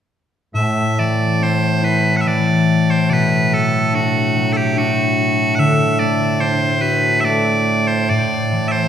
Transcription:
0, 0, Header, 1, 3, 480
1, 0, Start_track
1, 0, Tempo, 859599
1, 311, Time_signature, 3, 2, 24, 8
1, 1264, Tempo, 827586
1, 3664, Tempo, 849858
1, 5066, End_track
2, 0, Start_track
2, 0, Title_t, "Bagpipes"
2, 0, Program_c, 0, 109
2, 306, Note_on_c, 0, 45, 89
2, 306, Note_on_c, 0, 57, 89
2, 306, Note_on_c, 0, 76, 67
2, 553, Note_off_c, 0, 76, 0
2, 553, Note_on_c, 0, 74, 60
2, 798, Note_off_c, 0, 74, 0
2, 798, Note_on_c, 0, 72, 59
2, 1032, Note_off_c, 0, 72, 0
2, 1032, Note_on_c, 0, 71, 63
2, 1209, Note_off_c, 0, 71, 0
2, 1209, Note_on_c, 0, 78, 49
2, 1233, Note_off_c, 0, 78, 0
2, 1233, Note_on_c, 0, 76, 49
2, 1270, Note_off_c, 0, 76, 0
2, 1270, Note_on_c, 0, 74, 66
2, 1635, Note_off_c, 0, 74, 0
2, 1635, Note_on_c, 0, 72, 64
2, 1748, Note_off_c, 0, 72, 0
2, 1748, Note_on_c, 0, 74, 71
2, 1768, Note_off_c, 0, 74, 0
2, 1768, Note_on_c, 0, 71, 71
2, 2002, Note_off_c, 0, 71, 0
2, 2002, Note_on_c, 0, 69, 60
2, 2241, Note_off_c, 0, 69, 0
2, 2241, Note_on_c, 0, 66, 61
2, 2576, Note_off_c, 0, 66, 0
2, 2576, Note_on_c, 0, 69, 58
2, 2600, Note_off_c, 0, 69, 0
2, 2600, Note_on_c, 0, 67, 58
2, 2723, Note_off_c, 0, 67, 0
2, 2723, Note_on_c, 0, 66, 62
2, 3172, Note_off_c, 0, 66, 0
2, 3172, Note_on_c, 0, 78, 77
2, 3194, Note_off_c, 0, 78, 0
2, 3194, Note_on_c, 0, 76, 77
2, 3425, Note_off_c, 0, 76, 0
2, 3425, Note_on_c, 0, 74, 75
2, 3666, Note_off_c, 0, 74, 0
2, 3666, Note_on_c, 0, 72, 73
2, 3898, Note_off_c, 0, 72, 0
2, 3898, Note_on_c, 0, 71, 70
2, 4117, Note_off_c, 0, 71, 0
2, 4117, Note_on_c, 0, 76, 65
2, 4140, Note_off_c, 0, 76, 0
2, 4140, Note_on_c, 0, 74, 65
2, 4496, Note_off_c, 0, 74, 0
2, 4496, Note_on_c, 0, 72, 69
2, 4620, Note_off_c, 0, 72, 0
2, 4620, Note_on_c, 0, 74, 73
2, 4950, Note_off_c, 0, 74, 0
2, 4950, Note_on_c, 0, 76, 61
2, 4971, Note_off_c, 0, 76, 0
2, 4971, Note_on_c, 0, 72, 61
2, 5066, Note_off_c, 0, 45, 0
2, 5066, Note_off_c, 0, 57, 0
2, 5066, Note_off_c, 0, 72, 0
2, 5066, End_track
3, 0, Start_track
3, 0, Title_t, "Harp"
3, 0, Program_c, 1, 46
3, 300, Note_on_c, 1, 45, 46
3, 549, Note_on_c, 1, 52, 35
3, 780, Note_on_c, 1, 60, 38
3, 1016, Note_on_c, 1, 64, 38
3, 1249, Note_off_c, 1, 52, 0
3, 1256, Note_on_c, 1, 52, 37
3, 1742, Note_on_c, 1, 47, 45
3, 1777, Note_off_c, 1, 60, 0
3, 1779, Note_off_c, 1, 45, 0
3, 1779, Note_off_c, 1, 52, 0
3, 1986, Note_on_c, 1, 54, 38
3, 2230, Note_on_c, 1, 62, 41
3, 2470, Note_off_c, 1, 54, 0
3, 2476, Note_on_c, 1, 54, 44
3, 2521, Note_off_c, 1, 64, 0
3, 2709, Note_off_c, 1, 62, 0
3, 2711, Note_on_c, 1, 62, 39
3, 3187, Note_on_c, 1, 50, 50
3, 3211, Note_off_c, 1, 47, 0
3, 3211, Note_off_c, 1, 54, 0
3, 3425, Note_on_c, 1, 57, 44
3, 3664, Note_off_c, 1, 62, 0
3, 3666, Note_on_c, 1, 62, 47
3, 3893, Note_on_c, 1, 66, 45
3, 4127, Note_off_c, 1, 57, 0
3, 4129, Note_on_c, 1, 57, 47
3, 4620, Note_on_c, 1, 45, 55
3, 4646, Note_off_c, 1, 50, 0
3, 4858, Note_on_c, 1, 52, 39
3, 5066, Note_off_c, 1, 45, 0
3, 5066, Note_off_c, 1, 52, 0
3, 5066, Note_off_c, 1, 57, 0
3, 5066, Note_off_c, 1, 62, 0
3, 5066, Note_off_c, 1, 66, 0
3, 5066, End_track
0, 0, End_of_file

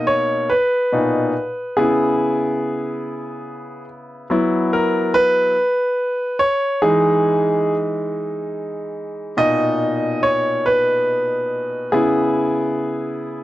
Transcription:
0, 0, Header, 1, 2, 480
1, 0, Start_track
1, 0, Key_signature, 5, "major"
1, 0, Tempo, 847458
1, 1004, Time_signature, 6, 3, 24, 8
1, 7610, End_track
2, 0, Start_track
2, 0, Title_t, "Grand piano"
2, 0, Program_c, 0, 0
2, 0, Note_on_c, 0, 47, 41
2, 0, Note_on_c, 0, 58, 38
2, 0, Note_on_c, 0, 63, 47
2, 0, Note_on_c, 0, 75, 77
2, 40, Note_on_c, 0, 73, 74
2, 59, Note_off_c, 0, 75, 0
2, 260, Note_off_c, 0, 47, 0
2, 262, Note_off_c, 0, 58, 0
2, 264, Note_off_c, 0, 63, 0
2, 281, Note_on_c, 0, 71, 69
2, 289, Note_off_c, 0, 73, 0
2, 523, Note_on_c, 0, 47, 38
2, 527, Note_on_c, 0, 46, 34
2, 529, Note_on_c, 0, 63, 38
2, 741, Note_off_c, 0, 47, 0
2, 743, Note_off_c, 0, 46, 0
2, 744, Note_off_c, 0, 63, 0
2, 1001, Note_on_c, 0, 68, 65
2, 1005, Note_on_c, 0, 49, 41
2, 1008, Note_on_c, 0, 59, 40
2, 1011, Note_on_c, 0, 64, 44
2, 1025, Note_off_c, 0, 71, 0
2, 2176, Note_off_c, 0, 68, 0
2, 2416, Note_off_c, 0, 49, 0
2, 2418, Note_off_c, 0, 59, 0
2, 2419, Note_off_c, 0, 64, 0
2, 2435, Note_on_c, 0, 54, 44
2, 2437, Note_on_c, 0, 59, 44
2, 2443, Note_on_c, 0, 64, 50
2, 2680, Note_on_c, 0, 70, 67
2, 2912, Note_on_c, 0, 71, 94
2, 2923, Note_off_c, 0, 70, 0
2, 3128, Note_off_c, 0, 54, 0
2, 3129, Note_off_c, 0, 59, 0
2, 3132, Note_off_c, 0, 64, 0
2, 3606, Note_off_c, 0, 71, 0
2, 3621, Note_on_c, 0, 73, 79
2, 3847, Note_off_c, 0, 73, 0
2, 3863, Note_on_c, 0, 68, 67
2, 3865, Note_on_c, 0, 52, 46
2, 3870, Note_on_c, 0, 56, 43
2, 3871, Note_on_c, 0, 63, 49
2, 4382, Note_off_c, 0, 68, 0
2, 5290, Note_off_c, 0, 52, 0
2, 5293, Note_off_c, 0, 56, 0
2, 5293, Note_off_c, 0, 63, 0
2, 5307, Note_on_c, 0, 47, 41
2, 5310, Note_on_c, 0, 46, 41
2, 5311, Note_on_c, 0, 75, 85
2, 5314, Note_on_c, 0, 63, 46
2, 5793, Note_on_c, 0, 73, 71
2, 5811, Note_off_c, 0, 75, 0
2, 6036, Note_on_c, 0, 71, 73
2, 6044, Note_off_c, 0, 73, 0
2, 6734, Note_off_c, 0, 47, 0
2, 6735, Note_off_c, 0, 46, 0
2, 6736, Note_off_c, 0, 71, 0
2, 6737, Note_off_c, 0, 63, 0
2, 6752, Note_on_c, 0, 68, 62
2, 6755, Note_on_c, 0, 49, 41
2, 6756, Note_on_c, 0, 59, 39
2, 6762, Note_on_c, 0, 64, 51
2, 7610, Note_off_c, 0, 49, 0
2, 7610, Note_off_c, 0, 59, 0
2, 7610, Note_off_c, 0, 64, 0
2, 7610, Note_off_c, 0, 68, 0
2, 7610, End_track
0, 0, End_of_file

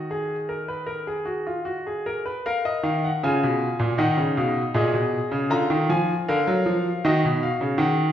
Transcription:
0, 0, Header, 1, 2, 480
1, 0, Start_track
1, 0, Tempo, 780234
1, 1521, Time_signature, 4, 2, 24, 8
1, 1993, Tempo, 759494
1, 5078, End_track
2, 0, Start_track
2, 0, Title_t, "Grand piano"
2, 0, Program_c, 0, 0
2, 0, Note_on_c, 0, 51, 60
2, 0, Note_on_c, 0, 75, 65
2, 66, Note_on_c, 0, 68, 64
2, 218, Note_off_c, 0, 68, 0
2, 300, Note_on_c, 0, 70, 59
2, 421, Note_on_c, 0, 71, 56
2, 424, Note_off_c, 0, 70, 0
2, 532, Note_on_c, 0, 70, 62
2, 545, Note_off_c, 0, 71, 0
2, 660, Note_on_c, 0, 68, 56
2, 661, Note_off_c, 0, 70, 0
2, 771, Note_on_c, 0, 66, 54
2, 785, Note_off_c, 0, 68, 0
2, 901, Note_off_c, 0, 66, 0
2, 902, Note_on_c, 0, 65, 56
2, 1016, Note_on_c, 0, 66, 59
2, 1027, Note_off_c, 0, 65, 0
2, 1144, Note_off_c, 0, 66, 0
2, 1148, Note_on_c, 0, 68, 56
2, 1252, Note_off_c, 0, 51, 0
2, 1253, Note_off_c, 0, 75, 0
2, 1269, Note_on_c, 0, 70, 67
2, 1272, Note_off_c, 0, 68, 0
2, 1387, Note_on_c, 0, 71, 59
2, 1392, Note_off_c, 0, 70, 0
2, 1511, Note_off_c, 0, 71, 0
2, 1513, Note_on_c, 0, 77, 76
2, 1515, Note_on_c, 0, 70, 75
2, 1632, Note_off_c, 0, 77, 0
2, 1632, Note_on_c, 0, 75, 73
2, 1743, Note_on_c, 0, 51, 79
2, 1745, Note_on_c, 0, 77, 66
2, 1751, Note_off_c, 0, 75, 0
2, 1866, Note_off_c, 0, 77, 0
2, 1873, Note_on_c, 0, 78, 66
2, 1894, Note_off_c, 0, 51, 0
2, 1976, Note_off_c, 0, 70, 0
2, 1988, Note_off_c, 0, 78, 0
2, 1990, Note_on_c, 0, 49, 88
2, 1992, Note_on_c, 0, 65, 71
2, 1993, Note_on_c, 0, 80, 74
2, 2108, Note_off_c, 0, 49, 0
2, 2116, Note_on_c, 0, 47, 77
2, 2263, Note_off_c, 0, 47, 0
2, 2344, Note_on_c, 0, 46, 86
2, 2457, Note_off_c, 0, 65, 0
2, 2457, Note_off_c, 0, 80, 0
2, 2461, Note_on_c, 0, 63, 69
2, 2464, Note_off_c, 0, 46, 0
2, 2464, Note_on_c, 0, 51, 88
2, 2464, Note_on_c, 0, 78, 72
2, 2582, Note_on_c, 0, 49, 71
2, 2584, Note_off_c, 0, 51, 0
2, 2615, Note_off_c, 0, 78, 0
2, 2703, Note_off_c, 0, 49, 0
2, 2709, Note_on_c, 0, 47, 79
2, 2709, Note_on_c, 0, 77, 61
2, 2859, Note_off_c, 0, 47, 0
2, 2859, Note_off_c, 0, 77, 0
2, 2932, Note_off_c, 0, 63, 0
2, 2944, Note_on_c, 0, 46, 87
2, 2948, Note_on_c, 0, 68, 76
2, 2949, Note_on_c, 0, 75, 66
2, 3065, Note_on_c, 0, 47, 73
2, 3066, Note_off_c, 0, 46, 0
2, 3218, Note_off_c, 0, 47, 0
2, 3305, Note_on_c, 0, 49, 83
2, 3419, Note_off_c, 0, 68, 0
2, 3420, Note_off_c, 0, 75, 0
2, 3422, Note_on_c, 0, 50, 89
2, 3425, Note_on_c, 0, 65, 75
2, 3427, Note_off_c, 0, 49, 0
2, 3427, Note_on_c, 0, 82, 83
2, 3546, Note_off_c, 0, 50, 0
2, 3548, Note_on_c, 0, 51, 88
2, 3579, Note_off_c, 0, 82, 0
2, 3669, Note_off_c, 0, 51, 0
2, 3670, Note_on_c, 0, 53, 87
2, 3675, Note_on_c, 0, 80, 75
2, 3821, Note_off_c, 0, 53, 0
2, 3824, Note_off_c, 0, 80, 0
2, 3897, Note_off_c, 0, 65, 0
2, 3918, Note_on_c, 0, 70, 77
2, 3918, Note_on_c, 0, 77, 78
2, 3921, Note_on_c, 0, 50, 92
2, 4035, Note_off_c, 0, 50, 0
2, 4037, Note_on_c, 0, 54, 92
2, 4153, Note_off_c, 0, 54, 0
2, 4153, Note_on_c, 0, 53, 79
2, 4303, Note_off_c, 0, 53, 0
2, 4383, Note_off_c, 0, 70, 0
2, 4383, Note_off_c, 0, 77, 0
2, 4399, Note_on_c, 0, 51, 95
2, 4400, Note_on_c, 0, 66, 76
2, 4403, Note_on_c, 0, 75, 73
2, 4514, Note_off_c, 0, 51, 0
2, 4526, Note_on_c, 0, 47, 84
2, 4550, Note_off_c, 0, 75, 0
2, 4641, Note_on_c, 0, 77, 64
2, 4671, Note_off_c, 0, 47, 0
2, 4755, Note_on_c, 0, 49, 81
2, 4787, Note_off_c, 0, 77, 0
2, 4862, Note_on_c, 0, 51, 92
2, 4864, Note_on_c, 0, 78, 68
2, 4871, Note_off_c, 0, 49, 0
2, 5016, Note_off_c, 0, 78, 0
2, 5078, Note_off_c, 0, 51, 0
2, 5078, Note_off_c, 0, 66, 0
2, 5078, End_track
0, 0, End_of_file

